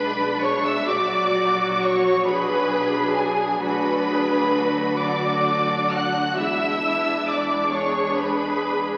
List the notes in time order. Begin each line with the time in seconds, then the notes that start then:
Already playing: B1 G#3 D4 B4 B5
0.42 C#5 C#6
0.65 E5 E6
0.88 A#1 F#3 F#4 D5 D6
1.82 C#5 C#6
2.26 B1 F#3 D4 G#4 B4 B5
3.16 G#4 G#5
3.61 D2 F#3 D4 F#4 B4 B5
4.09 G#4
4.55 F#4
5.00 F#3 D4 D5 D6
5.93 F#5 F#6
6.37 E2 G#3 D4 E4 E5 E6
7.29 D5 D6
7.72 G#4 C#5 C#6
8.18 B4 B5